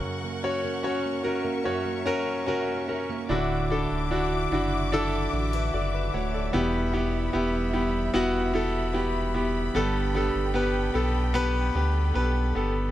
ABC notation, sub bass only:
X:1
M:4/4
L:1/16
Q:1/4=74
K:D
V:1 name="Sub bass" clef=bass
z16 | D,,,3 D,,,3 F,,,4 A,,,2 F,,,2 D,,,2 | E,,,4 E,,,4 E,,,8 | G,,,3 G,,,3 B,,,4 D,,2 B,,,2 G,,,2 |]